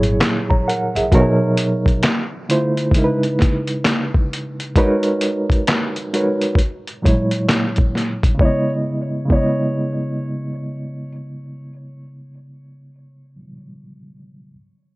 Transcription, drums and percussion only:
0.03 closed hi-hat
0.21 snare, clap, closed hi-hat
0.51 kick
0.70 closed hi-hat
0.96 closed hi-hat
1.12 kick, closed hi-hat
1.57 closed hi-hat
1.86 kick, closed hi-hat
2.03 snare, clap, closed hi-hat
2.50 closed hi-hat
2.77 closed hi-hat
2.91 kick, closed hi-hat
3.23 closed hi-hat
3.39 kick, snare, closed hi-hat
3.67 closed hi-hat
3.85 snare, clap, closed hi-hat
4.14 kick
4.33 closed hi-hat
4.60 closed hi-hat
4.76 kick, closed hi-hat
5.03 closed hi-hat
5.21 closed hi-hat
5.50 kick, closed hi-hat
5.67 snare, clap, closed hi-hat
5.96 closed hi-hat
6.14 closed hi-hat
6.41 closed hi-hat
6.55 kick, closed hi-hat
6.88 closed hi-hat
7.06 kick, closed hi-hat
7.31 closed hi-hat
7.49 snare, clap, closed hi-hat
7.76 kick, closed hi-hat
7.95 snare, closed hi-hat
8.23 kick, closed hi-hat
8.39 kick
9.30 kick

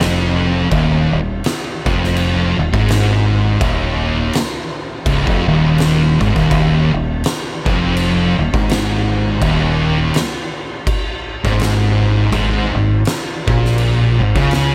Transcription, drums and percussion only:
0.01 snare
0.71 kick, crash
1.44 snare, crash
1.86 kick
2.04 snare
2.16 crash
2.74 kick
2.88 snare, crash
3.61 kick, crash
4.33 snare, crash
5.06 kick, crash
5.27 kick
5.78 snare, crash
6.21 kick
6.36 kick
6.51 kick, crash
7.24 snare, crash
7.66 kick
7.97 crash
8.54 kick
8.69 snare, crash
9.42 kick, crash
10.14 snare, crash
10.87 kick, crash
11.45 kick
11.60 snare, crash
12.32 kick, crash
13.05 snare, crash
13.48 kick
13.65 snare
13.78 crash
14.36 kick
14.51 snare, crash

